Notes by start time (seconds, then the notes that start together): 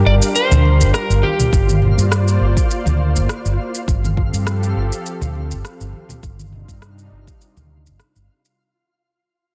Already playing: G3 D4 F4 G4 A#4 F5
0.06 G1 D5
0.22 shaker
0.36 C5, shaker
0.51 D2, low conga, shaker
0.65 muted conga
0.80 G1, shaker
0.94 A#4, cross-stick, shaker
1.10 G1, shaker
1.23 G4, high conga
1.39 muted conga, low conga, shaker
1.53 G1 A#3 F4 C5 D5, kick, shaker
1.69 high conga, shaker
1.82 low conga
1.98 G2, shaker
2.12 cross-stick, shaker
2.28 shaker
2.41 G1
2.57 kick, shaker
2.71 shaker
2.86 D2, high conga, low conga, shaker
3.16 G1, shaker
3.29 cross-stick, shaker
3.45 G1, shaker
3.75 shaker
3.88 G1 F3 C4 G4 A4, kick, shaker
4.03 muted conga, high conga, shaker
4.17 kick
4.33 G2, shaker
4.47 cross-stick, shaker
4.63 shaker
4.76 G1
4.92 shaker
5.06 shaker
5.21 D2, low conga, shaker
5.35 muted conga
5.51 G1, shaker
5.65 cross-stick, shaker
5.80 G1, shaker
5.93 high conga
6.09 muted conga, low conga, shaker
6.23 G1 C3 G3 D4 D#4, kick, shaker
6.39 high conga, shaker
6.53 low conga
6.68 G2, kick, shaker
6.82 cross-stick, shaker
6.99 shaker
7.11 G1
7.27 kick, muted conga, shaker
7.41 shaker
7.57 D2, high conga, low conga, shaker
7.86 G1, shaker
8.00 cross-stick, shaker
8.16 G1, shaker
8.45 shaker